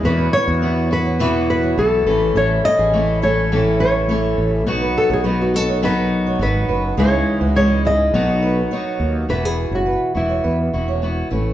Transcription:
Already playing: harmonium E3
0.03 fretless electric bass E2, steel-string acoustic guitar E2 B2 E3 B3 E4 F#4, harmonium F#3 B3 F#4, nylon-string guitar B4
0.18 steel-string acoustic guitar B4
0.33 steel-string acoustic guitar E3 B3 E4 F#4, nylon-string guitar C#5
0.47 fretless electric bass E2, steel-string acoustic guitar C#5
0.62 steel-string acoustic guitar E3 B3 E4 F#4 B4
0.90 steel-string acoustic guitar E3 B3 E4 F#4, nylon-string guitar B4
1.05 steel-string acoustic guitar C#5
1.19 steel-string acoustic guitar E2 B2 E3 B3 E4 F#4 B4
1.50 nylon-string guitar B4
1.63 steel-string acoustic guitar C#5
1.78 fretless electric bass B1, steel-string acoustic guitar E3 B3 E4 F#4, nylon-string guitar A4
2.06 fretless electric bass A1, steel-string acoustic guitar A2 E3 A3 C#4 A4 B4, harmonium C#3 A3 E4
2.35 fretless electric bass A1, steel-string acoustic guitar A4, nylon-string guitar C#5
2.64 steel-string acoustic guitar A3 C#4 A4, nylon-string guitar D#5
2.79 fretless electric bass A1, steel-string acoustic guitar G#4
2.93 steel-string acoustic guitar E3 A3 C#4 A4
3.22 steel-string acoustic guitar A3 C#4 A4, nylon-string guitar C#5
3.52 steel-string acoustic guitar A2 E3 A3 C#4 A4
3.80 steel-string acoustic guitar B4, nylon-string guitar C#5
4.09 steel-string acoustic guitar E3 A3 C#4 A4 C#5
4.38 fretless electric bass A1
4.66 fretless electric bass B1, steel-string acoustic guitar B2 F#3 B3 D#4 F#4, harmonium D#3 F#3 B3 F#4
4.81 steel-string acoustic guitar B4
4.98 nylon-string guitar A4
5.10 fretless electric bass B1, nylon-string guitar G#4, steel-string acoustic guitar C#5
5.24 steel-string acoustic guitar F#3 B3 D#4 F#4 B4
5.42 nylon-string guitar F#4
5.54 steel-string acoustic guitar B3 D#4 F#4, nylon-string guitar A4
5.68 steel-string acoustic guitar C#5
5.82 steel-string acoustic guitar B2 F#3 B3 D#4 F#4 B4, nylon-string guitar B4
6.27 steel-string acoustic guitar C#5
6.39 fretless electric bass G#1, steel-string acoustic guitar F#3 B3 D#4 F#4, nylon-string guitar B4
6.69 fretless electric bass F#1, steel-string acoustic guitar B4
6.97 fretless electric bass C#2, steel-string acoustic guitar C#3 E3 G#3 D#4 E4 G#4, harmonium C#3 E3 G#3 D#5, nylon-string guitar C#5
7.41 fretless electric bass C#2, steel-string acoustic guitar F#4, nylon-string guitar B4
7.55 steel-string acoustic guitar E3 G#3 D#4 E4, nylon-string guitar C#5
7.85 steel-string acoustic guitar G#3 D#4 E4 G#4, nylon-string guitar D#5
8.13 fretless electric bass B1, steel-string acoustic guitar B2 F#3 B3 D#4 F#4, harmonium D#3 F#3 B3 F#4
8.42 steel-string acoustic guitar B4
8.71 steel-string acoustic guitar F#3 B3 D#4 F#4 C#5
9.00 fretless electric bass D#2
9.29 fretless electric bass E1, steel-string acoustic guitar E2 B2 E3 B3 E4 F#4, nylon-string guitar B4
9.43 nylon-string guitar G#4, steel-string acoustic guitar B4
9.71 fretless electric bass F#1, nylon-string guitar F#4, steel-string acoustic guitar C#5
9.86 steel-string acoustic guitar B4
10.15 fretless electric bass E1, steel-string acoustic guitar E3 B3 E4 F#4, nylon-string guitar E4
10.29 steel-string acoustic guitar C#5
10.44 fretless electric bass E2, steel-string acoustic guitar B4
10.73 fretless electric bass E1, steel-string acoustic guitar E3 B3 E4 F#4
10.88 steel-string acoustic guitar C#5
11.02 steel-string acoustic guitar E3 B3 E4 F#4
11.30 fretless electric bass A1, steel-string acoustic guitar A3 C#4 E4 B4

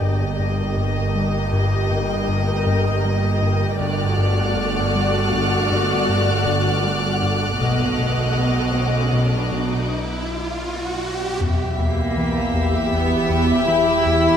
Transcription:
Already playing: violin section G5 A5 A#5
0.01 synth drone G1, double bass section G1, cello section G2, analog synth bass G2, viola section A#3 G4, synth texture A#4 D#5 G5, violin section D#5
0.39 analog synth bass G2
0.77 analog synth bass G2
1.16 analog synth bass G3
1.53 analog synth bass G2
1.91 analog synth bass G2
2.29 analog synth bass G2
2.66 analog synth bass G2
3.05 analog synth bass G3
3.42 analog synth bass G2
3.81 double bass section G1, synth drone G1, analog synth bass G2, cello section G2, viola section A3 F#4, synth texture A4 D5 F#5, violin section D5 D6 F6 F#6, riser
4.18 analog synth bass G2
4.57 analog synth bass G2
4.95 analog synth bass G3
5.33 analog synth bass G2
5.71 analog synth bass G2
6.09 analog synth bass G2
6.47 analog synth bass G2
6.85 analog synth bass G3
7.23 analog synth bass G2
7.60 double bass section B1, synth drone B1, cello section B2, analog synth bass B2, viola section A3 F#4, synth texture A4 D#5 F#5, violin section D#5
7.99 analog synth bass B2
8.37 analog synth bass B2
8.74 analog synth bass B3
9.13 analog synth bass B2
9.52 analog synth bass B2
11.40 double bass section E2, analog synth bass E2, synth drone E2, viola section G4, synth texture G4 E5 B5, violin section G4 E5 B6, sub drop
11.78 analog synth bass E2, cello section A#3
12.16 analog synth bass E3, violin section E6
12.54 analog synth bass E2
12.92 analog synth bass E2, cello section B3
13.30 analog synth bass E2
13.67 analog synth bass E3, cello section E4
14.06 analog synth bass E2

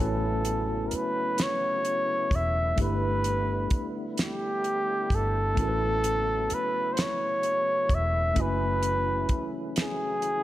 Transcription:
Already playing: tine electric piano A3 C#4 C#5 G#5, flugelhorn A4
0.00 fingered electric bass A1, tonewheel organ C#3 F#3 A3 B3 E4, tine electric piano E4 F#4 B4
0.45 closed hi-hat
0.88 flugelhorn A#4, closed hi-hat
0.93 flugelhorn B4, muted fingered electric bass stroke
1.38 snare, closed hi-hat
1.43 flugelhorn C#5
1.85 closed hi-hat
2.31 fingered electric bass E1, kick, closed hi-hat
2.36 flugelhorn E5
2.76 fingered electric bass G1, tonewheel organ D3 G3, tine electric piano A3 D4 E4, kick, closed hi-hat
2.80 tine electric piano G4 B4, flugelhorn B4
3.24 closed hi-hat
3.70 kick, closed hi-hat
4.18 snare, closed hi-hat
4.22 flugelhorn G4
4.64 closed hi-hat
5.10 fingered electric bass G1, kick, closed hi-hat
5.15 flugelhorn A4
5.55 fingered electric bass A1, tonewheel organ C#3 F#3, tine electric piano A3 C#4 E4, kick, closed hi-hat
5.59 tine electric piano F#4 A#4
5.67 tine electric piano B4
6.04 closed hi-hat
6.50 flugelhorn B4, muted fingered electric bass stroke, closed hi-hat
6.93 flugelhorn C5
6.97 snare, closed hi-hat
7.02 flugelhorn C#5
7.43 closed hi-hat
7.89 fingered electric bass E1, kick, closed hi-hat
7.94 flugelhorn E5
8.34 fingered electric bass F#1, tonewheel organ C#3 E3, tine electric piano A3 C#4 E4, kick, closed hi-hat
8.38 tine electric piano F#4 G#5, flugelhorn B4
8.83 closed hi-hat
9.29 muted fingered electric bass stroke, kick, closed hi-hat
9.76 snare, closed hi-hat
9.81 flugelhorn G#4
10.22 closed hi-hat

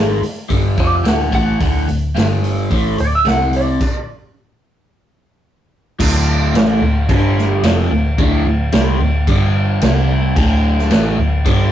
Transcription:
Already playing: picked electric bass G#1, overdriven electric guitar G#2 D#3 G#3
0.22 muted overdriven electric guitar stroke, muted picked electric bass stroke, open hi-hat
0.49 picked electric bass G1, overdriven electric guitar G2 D3 G3, kick, open hi-hat
0.77 picked electric bass F1, overdriven electric guitar F2 C3 F3, lead electric guitar D5, kick, open hi-hat
0.95 lead electric guitar E5
1.04 picked electric bass D1, overdriven electric guitar D2 A2 D3, snare, open hi-hat
1.08 lead electric guitar F#5
1.32 picked electric bass A1, overdriven electric guitar A2 E3 A3, lead electric guitar F#5, kick, open hi-hat
1.60 picked electric bass D1, overdriven electric guitar D2 A2 D3, kick, open hi-hat
1.87 picked electric bass D1, overdriven electric guitar D2 A2, open hi-hat
2.15 picked electric bass G1, overdriven electric guitar G2 D3 G3, snare, open hi-hat
2.44 open hi-hat
2.70 picked electric bass A1, overdriven electric guitar A2 E3 A3, kick, open hi-hat
2.98 picked electric bass D1, overdriven electric guitar D2 A2, lead electric guitar D5, open hi-hat
3.15 lead electric guitar E5
3.25 picked electric bass C2, overdriven electric guitar C3 G3 C4, lead electric guitar F#5, snare, open hi-hat
3.53 lead electric guitar D5, open hi-hat
3.81 kick, crash
5.99 picked electric bass D1, overdriven electric guitar D2 A2 D3, kick, crash
6.54 picked electric bass A1, overdriven electric guitar A2 E3 A3, snare, crash
6.82 picked electric bass D1, overdriven electric guitar D2 A2
7.09 picked electric bass G1, overdriven electric guitar G2 D3 G3, kick, crash
7.38 snare
7.63 picked electric bass F1, overdriven electric guitar F2 C3 F3, snare, crash
7.91 picked electric bass D1, overdriven electric guitar D2 A2
8.18 picked electric bass D1, overdriven electric guitar D2 A2 D3, kick, crash
8.44 picked electric bass D1, overdriven electric guitar D2 A2
8.72 picked electric bass C2, overdriven electric guitar C3 G3 C4, snare, crash
9.00 picked electric bass D1, overdriven electric guitar D2 A2
9.27 picked electric bass G1, overdriven electric guitar G2 D3 G3, kick, crash
9.81 picked electric bass C2, overdriven electric guitar C3 G3 C4, snare, crash
10.36 picked electric bass D1, overdriven electric guitar D2 A2 D3, kick, crash
10.79 snare
10.90 picked electric bass A1, overdriven electric guitar A2 E3 A3, snare, crash
11.17 picked electric bass D1, overdriven electric guitar D2 A2
11.45 picked electric bass G1, overdriven electric guitar G2 D3 G3, kick, crash

